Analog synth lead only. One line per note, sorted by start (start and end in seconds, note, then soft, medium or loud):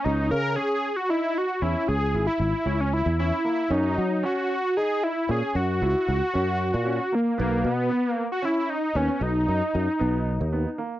0.04 0.30 D#4 medium
0.31 0.57 A#4 loud
0.56 0.98 G#4 loud
0.96 1.12 F#4 loud
1.10 1.39 E4 loud
1.38 1.63 F#4 loud
1.62 1.90 E4 medium
1.88 2.26 G#4 loud
2.27 2.39 E4 medium
2.39 2.82 E4 medium
2.80 2.95 C#4 medium
2.93 3.19 E4 medium
3.19 3.43 E4 medium
3.44 3.73 E4 medium
3.71 4.24 D#4 medium
4.25 4.78 F#4 medium
4.77 5.05 G#4 loud
5.03 5.32 E4 medium
5.31 5.55 G#4 medium
5.56 7.16 F#4 loud
7.15 7.40 A#3 medium
7.41 7.64 A#3 medium
7.66 8.09 B3 loud
8.09 8.27 A#3 loud
8.32 8.46 F#4 medium
8.45 8.71 E4 loud
8.70 8.98 D#4 medium
8.96 9.24 C#4 medium
9.22 10.79 D#4 medium